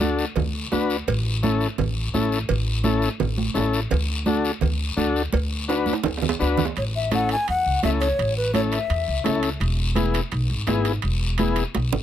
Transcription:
0.00 0.22 D2 loud
0.00 0.25 D4 medium
0.00 0.25 F#4 medium
0.00 0.26 A4 medium
0.00 high conga medium
0.00 short guiro medium
0.19 short guiro medium
0.36 0.64 D2 medium
0.36 cowbell medium
0.36 low conga medium
0.36 long guiro medium
0.72 1.00 D2 medium
0.72 0.97 D4 medium
0.72 0.97 F#4 medium
0.72 0.97 B4 medium
0.72 high conga medium
0.72 low timbale medium
0.72 short guiro medium
0.90 short guiro medium
1.08 1.64 A1 loud
1.08 cowbell loud
1.08 low conga medium
1.08 long guiro medium
1.43 1.67 C#4 medium
1.43 1.68 E4 medium
1.43 1.68 A4 medium
1.43 high conga medium
1.43 short guiro medium
1.61 short guiro medium
1.78 2.07 A1 medium
1.78 cowbell medium
1.78 low conga medium
1.78 long guiro medium
2.14 2.42 A1 medium
2.14 2.39 C#4 medium
2.14 2.39 E4 medium
2.14 2.39 A4 medium
2.14 high conga medium
2.14 short guiro medium
2.32 short guiro medium
2.49 3.06 A1 loud
2.49 cowbell loud
2.49 low conga medium
2.49 long guiro medium
2.84 3.09 C#4 medium
2.84 3.09 E4 medium
2.84 3.10 A4 loud
2.84 high conga medium
2.84 short guiro medium
3.02 short guiro medium
3.20 3.49 A1 medium
3.20 cowbell medium
3.20 low conga medium
3.20 long guiro medium
3.38 high conga medium
3.54 3.84 A1 medium
3.54 3.80 C#4 medium
3.54 3.80 E4 medium
3.54 3.80 A4 medium
3.54 high conga medium
3.54 low timbale medium
3.54 short guiro medium
3.73 short guiro medium
3.91 4.48 D2 loud
3.91 cowbell loud
3.91 low conga medium
3.91 long guiro medium
4.26 4.51 D4 medium
4.26 4.52 F#4 medium
4.26 4.52 A4 medium
4.26 high conga medium
4.26 short guiro medium
4.45 short guiro medium
4.61 4.91 D2 medium
4.61 cowbell medium
4.61 low conga medium
4.61 long guiro medium
4.97 5.26 D2 medium
4.97 5.22 D4 medium
4.97 5.22 F#4 medium
4.97 5.23 A4 medium
4.97 high conga medium
4.97 short guiro medium
5.16 short guiro medium
5.33 5.90 D2 loud
5.33 cowbell loud
5.33 high conga medium
5.33 long guiro medium
5.68 5.94 D4 medium
5.68 5.94 F#4 medium
5.68 5.94 B4 medium
5.68 high timbale medium
5.68 short guiro medium
5.86 high conga medium
5.86 short guiro medium
5.93 high timbale medium
6.04 6.33 D2 medium
6.04 cowbell medium
6.04 low conga medium
6.04 high timbale medium
6.04 long guiro medium
6.17 low timbale medium
6.22 low conga loud
6.29 low timbale medium
6.39 6.69 D2 medium
6.39 6.65 D4 medium
6.39 6.65 F#4 medium
6.39 6.65 B4 medium
6.39 low timbale medium
6.39 short guiro medium
6.57 low conga loud
6.57 short guiro medium
6.65 low timbale medium
6.76 7.33 A1 medium
6.76 6.84 C#5 medium
6.76 high timbale medium
6.76 long guiro medium
6.96 7.11 E5 medium
7.11 7.36 C#4 medium
7.11 7.36 E4 medium
7.11 7.37 A4 medium
7.11 7.29 F#5 loud
7.11 high conga medium
7.11 high timbale medium
7.11 short guiro medium
7.29 7.47 G#5 loud
7.29 high timbale medium
7.29 short guiro medium
7.48 7.62 E2 medium
7.48 7.81 F#5 medium
7.48 high timbale medium
7.48 long guiro medium
7.66 7.80 C#2 medium
7.83 8.12 C#2 medium
7.83 8.08 C#4 medium
7.83 8.08 E4 medium
7.83 8.08 A4 medium
7.83 7.90 E5 loud
7.83 high conga medium
7.83 high timbale medium
7.83 low timbale medium
7.83 short guiro medium
8.01 8.34 C#5 medium
8.01 high timbale medium
8.01 short guiro medium
8.19 8.75 A1 medium
8.19 high timbale medium
8.19 long guiro medium
8.37 8.53 B4 medium
8.53 8.79 C#4 medium
8.53 8.79 E4 medium
8.53 8.79 A4 medium
8.53 8.61 C#5 medium
8.53 high conga medium
8.53 high timbale medium
8.53 short guiro medium
8.72 9.39 E5 medium
8.72 high timbale medium
8.72 short guiro medium
8.90 9.04 E2 medium
8.90 high timbale medium
8.90 long guiro medium
9.08 9.22 C#2 medium
9.24 9.54 C#2 medium
9.24 9.49 C#4 medium
9.24 9.50 E4 medium
9.24 9.50 A4 loud
9.24 high conga medium
9.24 high timbale medium
9.24 low timbale medium
9.24 short guiro medium
9.43 high timbale medium
9.43 short guiro medium
9.60 10.17 E1 medium
9.60 high timbale medium
9.60 long guiro medium
9.95 10.21 B3 medium
9.95 10.21 E4 medium
9.95 10.21 G#4 medium
9.95 high conga medium
9.95 high timbale medium
9.95 short guiro medium
10.14 high timbale medium
10.14 short guiro medium
10.31 10.46 B1 loud
10.31 high timbale medium
10.31 long guiro medium
10.50 10.64 G#1 medium
10.67 10.96 G#1 medium
10.67 10.92 B3 medium
10.67 10.92 E4 medium
10.67 10.93 G#4 loud
10.67 high conga medium
10.67 high timbale medium
10.67 low timbale medium
10.67 short guiro medium
10.85 high timbale medium
10.85 short guiro medium
11.02 11.60 E1 loud
11.02 high timbale medium
11.02 long guiro medium
11.38 11.64 B3 medium
11.38 11.64 E4 medium
11.38 11.64 G#4 loud
11.38 high conga medium
11.38 high timbale medium
11.38 short guiro medium
11.56 high conga medium
11.56 high timbale medium
11.56 short guiro medium
11.75 11.89 B1 medium
11.75 high conga medium
11.75 high timbale medium
11.75 long guiro medium
11.93 12.03 G#1 medium
11.93 low conga loud

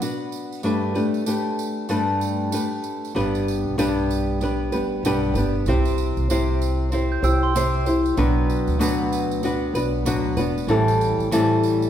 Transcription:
0.01 0.64 B3 soft
0.01 0.64 D4 medium
0.01 0.65 F#4 medium
0.01 0.65 B4 medium
0.01 tambourine medium
0.32 tambourine soft
0.52 tambourine soft
0.63 0.95 G2 medium
0.63 0.95 G3 medium
0.63 0.96 A3 medium
0.63 0.95 D4 medium
0.63 0.94 G4 medium
0.63 0.93 B4 medium
0.63 tambourine soft
0.94 1.25 A3 soft
0.94 1.26 D4 soft
0.94 1.26 G4 soft
0.94 1.27 B4 medium
0.94 tambourine soft
1.14 tambourine soft
1.26 1.88 A3 medium
1.26 1.89 D4 medium
1.26 1.90 G4 medium
1.26 1.90 B4 medium
1.26 tambourine medium
1.59 tambourine soft
1.89 2.52 G2 medium
1.89 2.55 G3 medium
1.89 2.51 A3 medium
1.89 2.53 D4 medium
1.89 2.53 G4 medium
1.89 2.54 B4 medium
1.89 tambourine soft
2.21 tambourine soft
2.52 3.15 A3 medium
2.52 3.15 D4 medium
2.52 3.15 G4 medium
2.52 3.16 B4 medium
2.52 tambourine medium
2.84 tambourine soft
3.05 tambourine soft
3.15 3.62 G1 medium
3.15 3.77 G2 medium
3.15 3.78 G3 medium
3.15 3.77 B3 medium
3.15 3.78 D4 medium
3.15 3.78 G4 medium
3.15 3.78 B4 medium
3.15 tambourine soft
3.35 tambourine soft
3.48 tambourine soft
3.65 4.68 B1 medium
3.78 4.41 G2 medium
3.78 5.05 G3 medium
3.78 4.40 B3 medium
3.78 4.41 D4 medium
3.78 4.42 G4 medium
3.78 4.42 B4 medium
3.78 tambourine medium
4.11 tambourine soft
4.41 4.72 B3 medium
4.41 4.72 D4 medium
4.41 4.72 G4 medium
4.41 4.71 B4 medium
4.41 tambourine soft
4.72 5.02 G1 medium
4.72 5.04 B3 soft
4.72 5.04 D4 soft
4.72 5.04 G4 soft
4.72 5.04 B4 medium
4.72 tambourine soft
5.03 5.32 B1 medium
5.03 5.36 G2 medium
5.03 5.36 G3 medium
5.03 5.36 B3 medium
5.03 5.36 D4 medium
5.03 5.35 G4 medium
5.03 5.34 B4 medium
5.03 tambourine medium
5.34 5.68 G1 medium
5.34 5.67 G4 medium
5.34 5.67 B4 medium
5.34 tambourine soft
5.38 5.67 B3 soft
5.38 5.68 D4 medium
5.66 6.13 C2 medium
5.66 6.29 C3 medium
5.66 6.29 C4 medium
5.66 6.30 E4 medium
5.66 6.30 G4 medium
5.66 6.30 C5 medium
5.66 tambourine soft
5.85 tambourine soft
5.98 tambourine soft
6.17 7.20 C2 medium
6.17 tambourine soft
6.30 6.92 C3 medium
6.30 6.90 C4 medium
6.30 6.92 E4 medium
6.30 6.92 G4 medium
6.30 6.93 C5 medium
6.30 tambourine medium
6.62 tambourine soft
6.92 7.23 C4 medium
6.92 7.23 E4 medium
6.92 7.23 G4 medium
6.92 7.22 C5 medium
6.92 tambourine soft
7.12 7.23 G6 medium
7.22 8.13 C2 medium
7.22 7.55 E4 soft
7.22 7.55 G4 medium
7.22 7.55 C5 medium
7.22 7.42 G5 medium
7.22 7.42 E6 medium
7.22 tambourine medium
7.43 8.14 C6 medium
7.55 7.86 C3 medium
7.55 7.87 C4 medium
7.55 7.87 E4 medium
7.55 7.86 G4 medium
7.55 7.85 C5 medium
7.55 tambourine medium
7.86 8.18 E4 soft
7.86 8.18 G4 medium
7.86 8.18 C5 soft
7.86 tambourine soft
8.06 tambourine soft
8.17 8.64 B1 medium
8.17 8.78 B2 medium
8.17 8.79 F#3 medium
8.17 8.79 B3 medium
8.17 8.79 D4 medium
8.17 8.79 F#4 medium
8.17 8.80 B4 medium
8.17 tambourine soft
8.50 tambourine soft
8.67 9.71 D2 medium
8.67 tambourine soft
8.79 9.43 B2 medium
8.79 9.43 F#3 medium
8.79 9.42 B3 medium
8.79 9.43 D4 medium
8.79 9.43 F#4 medium
8.79 9.44 B4 medium
8.79 tambourine medium
9.12 tambourine soft
9.31 tambourine soft
9.43 9.75 B3 medium
9.43 9.75 D4 medium
9.43 9.74 F#4 medium
9.43 9.73 B4 medium
9.43 tambourine soft
9.73 10.03 B1 medium
9.73 10.05 B3 soft
9.73 10.05 D4 medium
9.73 10.06 F#4 medium
9.73 10.06 B4 medium
9.73 tambourine soft
10.05 10.35 D2 medium
10.05 10.37 B2 medium
10.05 10.38 F#3 medium
10.05 10.38 B3 medium
10.05 10.38 D4 medium
10.05 10.37 F#4 medium
10.05 10.36 B4 medium
10.05 tambourine medium
10.36 10.66 E1 medium
10.36 10.69 B3 medium
10.36 10.69 D4 soft
10.36 10.69 F#4 medium
10.36 10.69 B4 medium
10.36 tambourine soft
10.58 tambourine soft
10.67 11.14 A1 loud
10.67 11.30 A2 medium
10.67 11.30 E3 medium
10.67 11.32 G3 medium
10.67 11.31 C4 medium
10.67 11.32 E4 medium
10.67 11.32 A4 medium
10.67 tambourine soft
10.88 tambourine soft
11.01 tambourine soft
11.18 11.90 A1 medium
11.18 tambourine soft
11.31 11.90 A2 medium
11.31 11.90 E3 medium
11.31 11.90 G3 medium
11.31 11.90 C4 loud
11.31 11.90 E4 medium
11.31 11.90 A4 medium
11.31 tambourine medium
11.63 tambourine soft
11.82 tambourine soft

